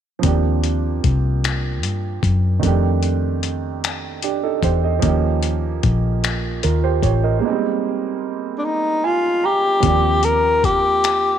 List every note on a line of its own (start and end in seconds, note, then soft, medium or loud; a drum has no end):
0.19 2.57 F3 medium
0.19 2.58 A#3 soft
0.23 1.00 D#2 medium
0.23 2.59 C4 medium
0.23 2.60 D4 soft
0.23 kick medium
0.23 closed hi-hat medium
0.27 2.61 G4 medium
0.64 closed hi-hat soft
1.04 1.84 C2 medium
1.04 kick medium
1.04 closed hi-hat soft
1.44 finger snap medium
1.44 closed hi-hat medium
1.83 2.20 G2 medium
1.83 closed hi-hat soft
2.23 2.59 F#2 medium
2.23 kick medium
2.23 closed hi-hat soft
2.60 4.97 D#3 medium
2.60 4.98 A3 medium
2.60 4.99 C4 medium
2.60 kick medium
2.60 closed hi-hat medium
2.64 4.59 F2 medium
2.64 3.82 D4 medium
2.64 3.83 G4 medium
3.03 closed hi-hat soft
3.43 closed hi-hat soft
3.84 finger snap medium
3.84 closed hi-hat medium
4.22 4.43 D4 soft
4.22 4.42 G4 medium
4.22 closed hi-hat soft
4.44 4.63 D#4 soft
4.44 4.62 A4 medium
4.63 4.99 E2 medium
4.63 4.83 G4 soft
4.63 4.82 C5 medium
4.63 kick medium
4.63 closed hi-hat soft
4.84 5.22 A4 soft
4.84 5.22 D#5 medium
4.99 5.79 D#2 medium
4.99 7.37 F3 medium
4.99 7.39 A#3 medium
4.99 kick medium
4.99 closed hi-hat medium
5.03 7.39 C#4 medium
5.03 7.40 D#4 medium
5.08 6.62 G4 medium
5.43 closed hi-hat soft
5.83 6.60 A#1 medium
5.83 kick medium
5.83 closed hi-hat soft
6.24 finger snap medium
6.24 closed hi-hat medium
6.63 7.00 D#2 medium
6.63 6.82 F4 soft
6.63 6.82 A#4 medium
6.63 closed hi-hat soft
6.84 7.02 G4 medium
6.84 7.02 C5 medium
7.03 7.39 A1 medium
7.03 7.22 G4 soft
7.03 7.22 C#5 medium
7.03 kick medium
7.03 closed hi-hat soft
7.23 7.62 A#4 soft
7.23 7.61 D#5 medium
7.39 9.77 G#3 medium
7.39 9.78 A#3 medium
7.39 7.50 B3 soft
7.46 9.81 G3 medium
7.46 9.80 D#4 medium
7.50 9.82 C4 medium
8.58 8.66 D4 soft
8.65 9.06 D#4 medium
9.04 9.47 F4 medium
9.04 9.41 G#5 medium
9.44 10.26 G4 medium
9.44 9.81 A#5 medium
9.80 11.39 D#2 medium
9.80 11.39 F3 medium
9.80 11.39 A#3 soft
9.80 11.39 C4 soft
9.80 kick medium
9.80 closed hi-hat medium
9.86 11.39 G4 medium
9.86 11.39 D5 soft
10.23 10.66 A#4 medium
10.23 closed hi-hat soft
10.64 11.39 G4 medium
10.64 kick medium
10.64 closed hi-hat soft
11.04 finger snap loud
11.04 closed hi-hat medium